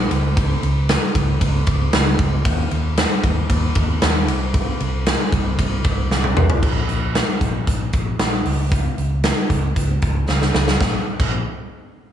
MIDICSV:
0, 0, Header, 1, 3, 480
1, 0, Start_track
1, 0, Tempo, 521739
1, 341, Time_signature, 4, 2, 24, 8
1, 11155, End_track
2, 0, Start_track
2, 0, Title_t, "Fingered electric bass"
2, 0, Program_c, 0, 33
2, 99, Note_on_c, 0, 37, 104
2, 493, Note_off_c, 0, 37, 0
2, 578, Note_on_c, 0, 37, 112
2, 874, Note_off_c, 0, 37, 0
2, 1058, Note_on_c, 0, 37, 111
2, 1256, Note_off_c, 0, 37, 0
2, 1298, Note_on_c, 0, 37, 109
2, 1496, Note_off_c, 0, 37, 0
2, 1538, Note_on_c, 0, 37, 88
2, 1736, Note_off_c, 0, 37, 0
2, 1773, Note_on_c, 0, 37, 104
2, 1973, Note_off_c, 0, 37, 0
2, 2015, Note_on_c, 0, 37, 96
2, 2214, Note_off_c, 0, 37, 0
2, 2254, Note_on_c, 0, 39, 110
2, 2453, Note_off_c, 0, 39, 0
2, 2499, Note_on_c, 0, 39, 103
2, 2795, Note_off_c, 0, 39, 0
2, 2975, Note_on_c, 0, 39, 102
2, 3174, Note_off_c, 0, 39, 0
2, 3215, Note_on_c, 0, 39, 104
2, 3414, Note_off_c, 0, 39, 0
2, 3457, Note_on_c, 0, 39, 91
2, 3655, Note_off_c, 0, 39, 0
2, 3700, Note_on_c, 0, 39, 114
2, 3942, Note_off_c, 0, 39, 0
2, 3942, Note_on_c, 0, 36, 94
2, 4334, Note_off_c, 0, 36, 0
2, 4421, Note_on_c, 0, 36, 116
2, 4716, Note_off_c, 0, 36, 0
2, 4899, Note_on_c, 0, 36, 96
2, 5096, Note_off_c, 0, 36, 0
2, 5138, Note_on_c, 0, 36, 112
2, 5336, Note_off_c, 0, 36, 0
2, 5378, Note_on_c, 0, 36, 90
2, 5576, Note_off_c, 0, 36, 0
2, 5616, Note_on_c, 0, 36, 103
2, 5814, Note_off_c, 0, 36, 0
2, 5858, Note_on_c, 0, 36, 96
2, 6056, Note_off_c, 0, 36, 0
2, 6096, Note_on_c, 0, 34, 93
2, 6294, Note_off_c, 0, 34, 0
2, 6337, Note_on_c, 0, 34, 107
2, 6634, Note_off_c, 0, 34, 0
2, 6817, Note_on_c, 0, 34, 82
2, 7015, Note_off_c, 0, 34, 0
2, 7058, Note_on_c, 0, 34, 92
2, 7256, Note_off_c, 0, 34, 0
2, 7300, Note_on_c, 0, 34, 80
2, 7497, Note_off_c, 0, 34, 0
2, 7539, Note_on_c, 0, 34, 86
2, 7737, Note_off_c, 0, 34, 0
2, 7776, Note_on_c, 0, 37, 90
2, 8172, Note_off_c, 0, 37, 0
2, 8262, Note_on_c, 0, 37, 99
2, 8557, Note_off_c, 0, 37, 0
2, 8740, Note_on_c, 0, 37, 98
2, 8938, Note_off_c, 0, 37, 0
2, 8980, Note_on_c, 0, 37, 99
2, 9177, Note_off_c, 0, 37, 0
2, 9223, Note_on_c, 0, 37, 85
2, 9419, Note_off_c, 0, 37, 0
2, 9459, Note_on_c, 0, 37, 111
2, 9657, Note_off_c, 0, 37, 0
2, 9699, Note_on_c, 0, 37, 93
2, 9897, Note_off_c, 0, 37, 0
2, 9941, Note_on_c, 0, 34, 96
2, 10075, Note_off_c, 0, 34, 0
2, 10299, Note_on_c, 0, 34, 91
2, 10523, Note_off_c, 0, 34, 0
2, 11155, End_track
3, 0, Start_track
3, 0, Title_t, "Drums"
3, 100, Note_on_c, 9, 51, 63
3, 192, Note_off_c, 9, 51, 0
3, 339, Note_on_c, 9, 51, 78
3, 340, Note_on_c, 9, 36, 127
3, 431, Note_off_c, 9, 51, 0
3, 432, Note_off_c, 9, 36, 0
3, 581, Note_on_c, 9, 51, 46
3, 673, Note_off_c, 9, 51, 0
3, 819, Note_on_c, 9, 51, 72
3, 823, Note_on_c, 9, 38, 127
3, 911, Note_off_c, 9, 51, 0
3, 915, Note_off_c, 9, 38, 0
3, 1059, Note_on_c, 9, 36, 98
3, 1063, Note_on_c, 9, 51, 62
3, 1151, Note_off_c, 9, 36, 0
3, 1155, Note_off_c, 9, 51, 0
3, 1299, Note_on_c, 9, 36, 89
3, 1300, Note_on_c, 9, 51, 85
3, 1391, Note_off_c, 9, 36, 0
3, 1392, Note_off_c, 9, 51, 0
3, 1533, Note_on_c, 9, 51, 62
3, 1539, Note_on_c, 9, 36, 103
3, 1625, Note_off_c, 9, 51, 0
3, 1631, Note_off_c, 9, 36, 0
3, 1775, Note_on_c, 9, 51, 76
3, 1778, Note_on_c, 9, 38, 113
3, 1867, Note_off_c, 9, 51, 0
3, 1870, Note_off_c, 9, 38, 0
3, 2013, Note_on_c, 9, 51, 58
3, 2015, Note_on_c, 9, 36, 100
3, 2105, Note_off_c, 9, 51, 0
3, 2107, Note_off_c, 9, 36, 0
3, 2254, Note_on_c, 9, 51, 84
3, 2256, Note_on_c, 9, 36, 127
3, 2346, Note_off_c, 9, 51, 0
3, 2348, Note_off_c, 9, 36, 0
3, 2496, Note_on_c, 9, 51, 49
3, 2588, Note_off_c, 9, 51, 0
3, 2736, Note_on_c, 9, 51, 74
3, 2740, Note_on_c, 9, 38, 118
3, 2828, Note_off_c, 9, 51, 0
3, 2832, Note_off_c, 9, 38, 0
3, 2976, Note_on_c, 9, 36, 94
3, 2978, Note_on_c, 9, 51, 59
3, 3068, Note_off_c, 9, 36, 0
3, 3070, Note_off_c, 9, 51, 0
3, 3217, Note_on_c, 9, 36, 97
3, 3217, Note_on_c, 9, 51, 79
3, 3309, Note_off_c, 9, 36, 0
3, 3309, Note_off_c, 9, 51, 0
3, 3451, Note_on_c, 9, 51, 62
3, 3458, Note_on_c, 9, 36, 100
3, 3543, Note_off_c, 9, 51, 0
3, 3550, Note_off_c, 9, 36, 0
3, 3695, Note_on_c, 9, 51, 68
3, 3698, Note_on_c, 9, 38, 118
3, 3787, Note_off_c, 9, 51, 0
3, 3790, Note_off_c, 9, 38, 0
3, 3940, Note_on_c, 9, 51, 60
3, 4032, Note_off_c, 9, 51, 0
3, 4179, Note_on_c, 9, 36, 127
3, 4179, Note_on_c, 9, 51, 76
3, 4271, Note_off_c, 9, 36, 0
3, 4271, Note_off_c, 9, 51, 0
3, 4420, Note_on_c, 9, 51, 50
3, 4512, Note_off_c, 9, 51, 0
3, 4659, Note_on_c, 9, 51, 69
3, 4663, Note_on_c, 9, 38, 120
3, 4751, Note_off_c, 9, 51, 0
3, 4755, Note_off_c, 9, 38, 0
3, 4899, Note_on_c, 9, 36, 103
3, 4907, Note_on_c, 9, 51, 65
3, 4991, Note_off_c, 9, 36, 0
3, 4999, Note_off_c, 9, 51, 0
3, 5140, Note_on_c, 9, 36, 96
3, 5143, Note_on_c, 9, 51, 77
3, 5232, Note_off_c, 9, 36, 0
3, 5235, Note_off_c, 9, 51, 0
3, 5376, Note_on_c, 9, 51, 63
3, 5380, Note_on_c, 9, 36, 102
3, 5468, Note_off_c, 9, 51, 0
3, 5472, Note_off_c, 9, 36, 0
3, 5625, Note_on_c, 9, 38, 61
3, 5717, Note_off_c, 9, 38, 0
3, 5740, Note_on_c, 9, 48, 62
3, 5832, Note_off_c, 9, 48, 0
3, 5858, Note_on_c, 9, 45, 91
3, 5950, Note_off_c, 9, 45, 0
3, 5976, Note_on_c, 9, 43, 100
3, 6068, Note_off_c, 9, 43, 0
3, 6097, Note_on_c, 9, 36, 116
3, 6097, Note_on_c, 9, 49, 89
3, 6189, Note_off_c, 9, 36, 0
3, 6189, Note_off_c, 9, 49, 0
3, 6336, Note_on_c, 9, 42, 57
3, 6428, Note_off_c, 9, 42, 0
3, 6578, Note_on_c, 9, 42, 74
3, 6582, Note_on_c, 9, 38, 111
3, 6670, Note_off_c, 9, 42, 0
3, 6674, Note_off_c, 9, 38, 0
3, 6818, Note_on_c, 9, 36, 89
3, 6821, Note_on_c, 9, 42, 67
3, 6910, Note_off_c, 9, 36, 0
3, 6913, Note_off_c, 9, 42, 0
3, 7058, Note_on_c, 9, 42, 93
3, 7060, Note_on_c, 9, 36, 91
3, 7150, Note_off_c, 9, 42, 0
3, 7152, Note_off_c, 9, 36, 0
3, 7293, Note_on_c, 9, 42, 68
3, 7301, Note_on_c, 9, 36, 95
3, 7385, Note_off_c, 9, 42, 0
3, 7393, Note_off_c, 9, 36, 0
3, 7536, Note_on_c, 9, 42, 87
3, 7539, Note_on_c, 9, 38, 104
3, 7628, Note_off_c, 9, 42, 0
3, 7631, Note_off_c, 9, 38, 0
3, 7778, Note_on_c, 9, 46, 76
3, 7870, Note_off_c, 9, 46, 0
3, 8016, Note_on_c, 9, 42, 89
3, 8020, Note_on_c, 9, 36, 127
3, 8108, Note_off_c, 9, 42, 0
3, 8112, Note_off_c, 9, 36, 0
3, 8261, Note_on_c, 9, 42, 55
3, 8353, Note_off_c, 9, 42, 0
3, 8496, Note_on_c, 9, 42, 82
3, 8500, Note_on_c, 9, 38, 123
3, 8588, Note_off_c, 9, 42, 0
3, 8592, Note_off_c, 9, 38, 0
3, 8740, Note_on_c, 9, 36, 92
3, 8742, Note_on_c, 9, 42, 73
3, 8832, Note_off_c, 9, 36, 0
3, 8834, Note_off_c, 9, 42, 0
3, 8980, Note_on_c, 9, 42, 96
3, 8982, Note_on_c, 9, 36, 93
3, 9072, Note_off_c, 9, 42, 0
3, 9074, Note_off_c, 9, 36, 0
3, 9217, Note_on_c, 9, 42, 70
3, 9224, Note_on_c, 9, 36, 94
3, 9309, Note_off_c, 9, 42, 0
3, 9316, Note_off_c, 9, 36, 0
3, 9464, Note_on_c, 9, 38, 60
3, 9556, Note_off_c, 9, 38, 0
3, 9584, Note_on_c, 9, 38, 54
3, 9676, Note_off_c, 9, 38, 0
3, 9701, Note_on_c, 9, 38, 87
3, 9793, Note_off_c, 9, 38, 0
3, 9823, Note_on_c, 9, 38, 88
3, 9915, Note_off_c, 9, 38, 0
3, 9941, Note_on_c, 9, 36, 111
3, 9943, Note_on_c, 9, 38, 94
3, 10033, Note_off_c, 9, 36, 0
3, 10035, Note_off_c, 9, 38, 0
3, 10300, Note_on_c, 9, 49, 82
3, 10301, Note_on_c, 9, 36, 106
3, 10392, Note_off_c, 9, 49, 0
3, 10393, Note_off_c, 9, 36, 0
3, 11155, End_track
0, 0, End_of_file